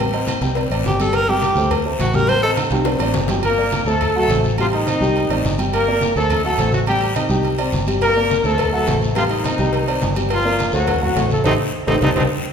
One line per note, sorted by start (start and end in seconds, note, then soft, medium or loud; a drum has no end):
0.00 0.36 A1 medium
0.00 0.11 G3 medium
0.00 0.11 G4 medium
0.00 0.11 G5 medium
0.00 cowbell loud
0.00 high conga soft
0.00 low agogo loud
0.14 0.37 C4 medium
0.14 0.37 C5 medium
0.14 0.37 D#5 medium
0.14 cowbell medium
0.14 high conga soft
0.14 low agogo medium
0.27 cowbell medium
0.27 high conga loud
0.27 low timbale medium
0.27 low agogo loud
0.27 short guiro medium
0.41 0.68 C2 medium
0.41 0.53 G3 medium
0.41 0.53 G4 medium
0.41 0.54 G5 medium
0.41 cowbell medium
0.41 high conga soft
0.41 short guiro medium
0.55 0.68 C4 medium
0.55 0.68 C5 medium
0.55 0.68 D5 medium
0.55 cowbell loud
0.55 high conga soft
0.55 low agogo medium
0.55 long guiro medium
0.70 0.84 A1 medium
0.70 0.95 C4 medium
0.70 0.95 C5 medium
0.70 0.95 D5 medium
0.70 high conga soft
0.70 low agogo loud
0.84 1.51 G1 medium
0.84 1.00 G4 medium
0.84 cowbell medium
0.84 high conga medium
0.84 low timbale medium
0.84 short guiro medium
1.00 1.23 G3 medium
1.00 1.24 G4 medium
1.00 1.17 A4 loud
1.00 1.24 G5 medium
1.00 high conga soft
1.00 low agogo medium
1.00 short guiro medium
1.13 1.31 A#4 loud
1.13 cowbell loud
1.13 high conga soft
1.13 low agogo loud
1.13 long guiro medium
1.28 1.52 G3 loud
1.28 1.72 G4 loud
1.28 1.52 G4 medium
1.28 1.52 G5 medium
1.28 high conga soft
1.42 cowbell medium
1.42 high conga medium
1.42 low timbale medium
1.42 low agogo medium
1.42 short guiro medium
1.55 1.96 D2 loud
1.55 1.80 A3 medium
1.55 1.81 A4 medium
1.55 1.81 C5 medium
1.55 short guiro medium
1.71 cowbell loud
1.71 high conga soft
1.71 low conga medium
1.71 low agogo loud
1.71 long guiro medium
1.86 2.09 A3 medium
1.86 2.09 A4 medium
1.86 2.09 C5 medium
1.86 high conga soft
1.99 2.66 A1 medium
1.99 2.16 F#4 loud
1.99 cowbell medium
1.99 high conga medium
1.99 low timbale medium
1.99 low agogo medium
1.99 short guiro medium
2.13 2.26 G3 medium
2.13 2.26 G4 medium
2.13 2.30 A#4 loud
2.13 2.27 G5 medium
2.13 high conga medium
2.13 short guiro medium
2.27 2.40 G3 medium
2.27 2.40 G4 medium
2.27 2.42 C5 loud
2.27 2.40 G5 medium
2.27 cowbell loud
2.27 high conga soft
2.27 low agogo loud
2.27 long guiro medium
2.42 2.66 C4 medium
2.42 2.52 A4 loud
2.42 2.66 C5 medium
2.42 2.67 D#5 medium
2.42 cowbell medium
2.42 high conga soft
2.42 low agogo medium
2.56 cowbell medium
2.56 high conga medium
2.56 high timbale loud
2.56 low agogo loud
2.56 short guiro medium
2.70 2.98 C2 medium
2.70 2.84 G3 medium
2.70 2.84 G4 medium
2.70 2.84 G5 medium
2.70 cowbell medium
2.70 high timbale loud
2.70 short guiro medium
2.85 2.98 C4 medium
2.85 2.98 C5 medium
2.85 2.99 D5 medium
2.85 cowbell loud
2.85 high bongo medium
2.85 high timbale medium
2.85 low agogo medium
2.85 long guiro medium
2.99 3.13 A1 medium
2.99 3.25 C4 medium
2.99 3.25 C5 medium
2.99 3.25 D5 medium
2.99 high bongo medium
2.99 high conga soft
2.99 low agogo loud
3.13 3.80 G1 medium
3.13 cowbell medium
3.13 low bongo loud
3.13 high conga medium
3.13 low timbale medium
3.13 short guiro medium
3.28 3.41 G3 medium
3.28 3.41 G4 medium
3.28 3.42 G5 medium
3.28 low bongo loud
3.28 high conga soft
3.28 low timbale medium
3.28 low agogo medium
3.28 short guiro medium
3.43 3.84 A#3 medium
3.43 3.84 A#4 loud
3.43 high conga soft
3.43 low agogo loud
3.43 long guiro medium
3.58 3.81 A#3 medium
3.58 3.81 A#4 medium
3.58 3.82 D5 medium
3.58 high conga soft
3.71 high conga loud
3.71 low timbale medium
3.71 low agogo medium
3.71 short guiro medium
3.85 4.25 D2 medium
3.85 4.10 A3 medium
3.85 4.16 A3 medium
3.85 4.10 A4 medium
3.85 4.15 A4 loud
3.85 4.10 C5 medium
3.85 short guiro medium
4.01 high conga soft
4.01 low conga medium
4.01 low agogo loud
4.01 long guiro medium
4.15 4.27 F#3 medium
4.15 4.43 A3 medium
4.15 4.27 F#4 medium
4.15 4.43 A4 loud
4.15 4.27 F#5 medium
4.15 high conga soft
4.28 4.95 A1 medium
4.28 4.53 A3 medium
4.28 4.53 A4 medium
4.28 4.53 C5 medium
4.28 high conga medium
4.28 low timbale medium
4.28 low agogo medium
4.28 short guiro medium
4.44 high conga medium
4.44 short guiro medium
4.58 4.67 F3 medium
4.58 4.82 G3 medium
4.58 4.66 F4 loud
4.58 4.82 G4 medium
4.58 4.82 G5 medium
4.58 high conga soft
4.58 low agogo loud
4.58 long guiro medium
4.73 5.56 D#3 medium
4.73 5.55 D#4 loud
4.73 high conga soft
4.73 low agogo medium
4.87 4.99 C4 medium
4.87 4.99 C5 medium
4.87 4.99 D#5 medium
4.87 high conga medium
4.87 low timbale medium
4.87 low agogo loud
4.87 short guiro medium
5.00 5.27 C2 medium
5.00 5.24 G3 loud
5.00 5.25 G4 medium
5.00 5.25 G5 medium
5.00 high conga soft
5.00 short guiro medium
5.16 high conga soft
5.16 low agogo medium
5.16 long guiro medium
5.29 5.43 A1 medium
5.29 5.54 C4 medium
5.29 5.54 C5 medium
5.29 5.54 D5 medium
5.29 high conga soft
5.29 low agogo loud
5.44 6.10 G1 medium
5.44 high conga medium
5.44 low timbale medium
5.44 short guiro medium
5.58 5.82 G3 medium
5.58 5.82 G4 medium
5.58 5.82 G5 medium
5.58 low agogo medium
5.58 short guiro medium
5.73 6.13 A#3 medium
5.73 6.13 A#4 loud
5.73 high conga soft
5.73 low agogo loud
5.73 long guiro medium
5.87 6.10 A#3 medium
5.87 6.11 A#4 medium
5.87 6.11 D5 medium
5.87 high conga soft
6.01 high conga medium
6.01 low timbale medium
6.01 low agogo medium
6.01 short guiro medium
6.16 6.56 D2 medium
6.16 6.39 A3 medium
6.16 6.43 A3 medium
6.16 6.43 A4 loud
6.16 6.40 A4 medium
6.16 6.40 C5 medium
6.16 short guiro medium
6.30 high conga soft
6.30 low conga medium
6.30 low agogo loud
6.30 long guiro medium
6.44 6.56 F#3 medium
6.44 6.71 A3 medium
6.44 6.56 F#4 loud
6.44 6.71 A4 loud
6.44 6.56 F#5 medium
6.44 high conga soft
6.58 7.24 A1 medium
6.58 6.82 A3 medium
6.58 6.82 A4 medium
6.58 6.82 C5 medium
6.58 high conga medium
6.58 low timbale medium
6.58 low agogo medium
6.58 short guiro medium
6.72 6.80 F#3 medium
6.72 6.80 F#4 medium
6.72 high conga medium
6.72 short guiro medium
6.87 7.14 G3 medium
6.87 7.11 G3 medium
6.87 7.14 G4 loud
6.87 7.11 G4 medium
6.87 7.11 G5 medium
6.87 high conga soft
6.87 low agogo loud
6.87 long guiro medium
7.01 high conga soft
7.01 low agogo medium
7.15 7.57 D#3 medium
7.15 7.27 C4 medium
7.15 7.58 D#4 medium
7.15 7.27 C5 medium
7.15 7.27 D#5 medium
7.15 high conga medium
7.15 low timbale medium
7.15 low agogo loud
7.15 short guiro medium
7.29 7.70 C2 medium
7.29 7.53 G3 medium
7.29 7.53 G4 loud
7.29 7.54 G5 medium
7.29 high conga soft
7.29 short guiro medium
7.43 low agogo medium
7.43 long guiro medium
7.58 7.82 C4 medium
7.58 7.82 C5 medium
7.58 7.82 D5 medium
7.58 high conga soft
7.58 low agogo loud
7.72 8.39 G1 medium
7.72 high conga medium
7.72 low timbale medium
7.72 short guiro medium
7.87 8.11 G3 medium
7.87 8.11 G4 medium
7.87 8.11 G5 medium
7.87 high conga soft
7.87 low agogo medium
7.87 short guiro medium
8.01 8.42 A#3 medium
8.01 8.42 A#4 loud
8.01 cowbell loud
8.01 high conga soft
8.01 low agogo loud
8.01 long guiro medium
8.16 8.39 A#3 medium
8.16 8.40 A#4 medium
8.16 8.40 D5 medium
8.16 high conga soft
8.30 cowbell medium
8.30 high conga loud
8.30 low timbale medium
8.30 low agogo medium
8.30 short guiro medium
8.44 8.84 D2 medium
8.44 8.68 A3 medium
8.44 8.73 A3 medium
8.44 8.72 A4 loud
8.44 8.68 A4 medium
8.44 8.68 C5 medium
8.44 short guiro medium
8.58 cowbell loud
8.58 high conga soft
8.58 low conga medium
8.58 low agogo loud
8.58 long guiro medium
8.72 8.84 F#3 medium
8.72 9.00 A3 medium
8.72 8.85 F#4 medium
8.72 9.00 A4 loud
8.72 8.85 F#5 loud
8.72 high conga soft
8.87 9.54 A1 medium
8.87 9.11 A3 medium
8.87 9.11 A4 medium
8.87 9.11 C5 medium
8.87 cowbell medium
8.87 high conga medium
8.87 low timbale medium
8.87 low agogo medium
8.87 short guiro medium
9.02 high conga medium
9.02 short guiro medium
9.15 9.24 F3 medium
9.15 9.39 G3 medium
9.15 9.23 F4 loud
9.15 9.40 G4 medium
9.15 9.40 G5 medium
9.15 cowbell loud
9.15 high conga soft
9.15 low agogo loud
9.15 long guiro medium
9.29 10.13 D#3 medium
9.29 10.12 D#4 loud
9.29 cowbell medium
9.29 high conga soft
9.29 low agogo medium
9.44 9.56 C4 medium
9.44 9.56 C5 medium
9.44 9.57 D#5 medium
9.44 cowbell medium
9.44 high conga loud
9.44 low timbale medium
9.44 low agogo loud
9.44 short guiro medium
9.58 9.99 C2 loud
9.58 9.82 G3 medium
9.58 9.82 G4 medium
9.58 9.83 G5 medium
9.58 cowbell medium
9.58 high conga soft
9.58 short guiro medium
9.73 cowbell loud
9.73 low agogo medium
9.73 long guiro medium
9.87 10.11 C4 medium
9.87 10.11 C5 medium
9.87 10.11 D5 medium
9.87 high conga soft
9.87 low agogo loud
10.01 10.68 G1 medium
10.01 cowbell medium
10.01 high conga medium
10.01 low timbale medium
10.01 short guiro medium
10.15 10.40 G3 medium
10.15 10.40 G4 medium
10.15 10.40 G5 medium
10.15 high conga soft
10.15 low agogo medium
10.15 short guiro medium
10.29 10.72 F3 medium
10.29 cowbell loud
10.29 high conga soft
10.29 low agogo loud
10.29 long guiro medium
10.33 10.72 F4 loud
10.45 10.68 A#3 medium
10.45 10.69 A#4 medium
10.45 10.69 D5 medium
10.45 high conga soft
10.59 cowbell medium
10.59 high conga medium
10.59 low timbale medium
10.59 low agogo medium
10.59 short guiro medium
10.72 11.13 D2 loud
10.72 11.01 F#3 medium
10.72 10.96 A3 medium
10.72 11.01 F#4 loud
10.72 10.97 A4 medium
10.72 10.97 C5 medium
10.72 short guiro medium
10.87 cowbell loud
10.87 high conga soft
10.87 low conga medium
10.87 low agogo loud
10.87 long guiro medium
11.02 11.13 F#3 medium
11.02 11.30 F#3 medium
11.02 11.14 F#4 medium
11.02 11.29 F#4 loud
11.02 11.14 F#5 medium
11.02 high conga soft
11.02 low conga medium
11.15 11.43 A1 medium
11.15 11.39 A3 medium
11.15 11.40 A4 medium
11.15 11.40 C5 medium
11.15 cowbell medium
11.15 high conga medium
11.15 low timbale medium
11.15 low agogo medium
11.15 short guiro medium
11.30 11.45 A3 medium
11.30 11.46 A4 loud
11.30 high conga medium
11.30 short guiro medium
11.44 11.55 A1 loud
11.44 11.53 A3 loud
11.44 11.53 C4 loud
11.44 11.53 D#4 loud
11.44 11.54 G4 loud
11.44 11.54 A4 loud
11.44 11.54 C5 loud
11.44 cowbell loud
11.44 high conga loud
11.44 high timbale loud
11.44 long guiro loud
11.87 11.98 A1 medium
11.87 11.95 A3 medium
11.87 11.95 C4 loud
11.87 11.95 D#4 loud
11.87 11.96 G4 medium
11.87 11.96 A4 loud
11.87 11.97 C5 loud
11.87 cowbell loud
11.87 high conga loud
11.87 high timbale loud
11.87 long guiro medium
12.01 12.12 C2 loud
12.01 12.10 C4 loud
12.01 12.10 D4 loud
12.01 12.11 D#4 loud
12.01 12.10 D#4 loud
12.01 12.11 G4 loud
12.01 12.11 C5 loud
12.01 cowbell loud
12.01 high conga loud
12.01 high timbale loud
12.01 long guiro loud
12.16 12.27 C2 medium
12.16 12.23 C4 medium
12.16 12.23 D4 loud
12.16 12.25 D#4 loud
12.16 12.23 D#4 medium
12.16 12.25 G4 loud
12.16 12.25 C5 medium
12.16 cowbell loud
12.16 high conga loud
12.16 high timbale loud
12.16 long guiro loud